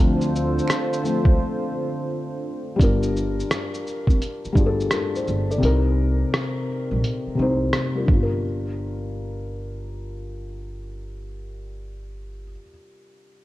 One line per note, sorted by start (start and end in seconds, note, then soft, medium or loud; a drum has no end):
0.00 0.58 D2 loud
0.00 2.76 D3 medium
0.00 1.02 F3 medium
0.00 1.02 A3 medium
0.00 1.02 C4 medium
0.00 2.75 D4 medium
0.00 2.06 F4 medium
0.00 2.76 F4 medium
0.00 2.76 A4 medium
0.00 2.76 C5 loud
0.00 2.05 F5 medium
0.21 shaker soft
0.35 shaker soft
0.58 shaker soft
0.67 finger snap medium
0.67 cross-stick loud
0.67 closed hi-hat medium
0.67 shaker medium
0.93 shaker medium
1.03 1.35 F3 soft
1.03 1.35 A3 soft
1.03 1.35 C4 medium
1.03 shaker medium
1.25 1.36 C2 medium
1.25 kick medium
2.76 3.82 G3 medium
2.76 3.83 D4 medium
2.76 kick loud
2.80 3.40 G1 loud
2.80 3.84 F4 medium
2.80 3.85 A#4 loud
2.80 closed hi-hat medium
2.80 shaker medium
3.03 shaker soft
3.16 shaker soft
3.40 shaker soft
3.51 cross-stick loud
3.51 closed hi-hat medium
3.51 shaker medium
3.74 shaker soft
3.87 shaker soft
4.07 4.18 F1 medium
4.07 kick medium
4.07 shaker soft
4.22 closed hi-hat medium
4.22 shaker medium
4.45 muted upright bass stroke soft
4.45 shaker soft
4.53 4.86 G1 medium
4.53 5.34 G3 medium
4.53 5.35 D4 medium
4.53 kick medium
4.57 4.91 F4 medium
4.57 4.66 G#4 medium
4.57 shaker soft
4.66 4.96 A4 medium
4.80 shaker soft
4.91 5.14 F4 medium
4.91 5.13 A#4 medium
4.91 cross-stick loud
4.91 closed hi-hat medium
4.91 shaker medium
5.15 5.49 G4 medium
5.15 5.48 C5 medium
5.15 shaker soft
5.28 5.57 G1 medium
5.28 shaker soft
5.50 5.84 A4 medium
5.50 5.83 D5 medium
5.50 shaker soft
5.58 6.64 C3 medium
5.58 6.65 C4 medium
5.62 6.23 C2 loud
5.62 6.66 D#4 medium
5.62 6.67 A#4 loud
5.62 closed hi-hat medium
6.34 cross-stick medium
6.34 closed hi-hat medium
6.91 7.01 A#1 medium
7.04 closed hi-hat medium
7.27 muted upright bass stroke soft
7.35 8.07 C3 medium
7.35 8.08 C4 medium
7.39 7.69 C2 medium
7.39 8.09 D#4 medium
7.39 7.75 C5 medium
7.73 cross-stick loud
7.73 closed hi-hat medium
7.95 12.41 G3 medium
7.95 8.09 F4 soft
7.95 8.08 A#4 medium
8.04 12.51 D4 medium
8.04 kick medium
8.09 12.55 G1 medium
8.13 12.60 F4 medium
8.23 12.69 A#4 medium